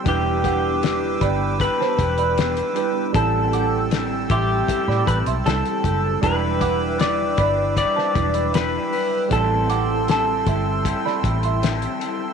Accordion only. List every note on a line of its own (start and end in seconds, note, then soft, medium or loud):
0.00 6.19 G5 medium
0.00 12.33 E6 medium
0.06 3.11 B4 medium
0.06 3.11 D6 medium
3.14 6.20 A4 medium
3.14 6.20 A5 medium
6.22 9.28 B4 medium
6.22 12.33 G5 medium
6.22 9.28 D6 medium
9.31 12.33 A4 medium
9.31 12.33 C6 medium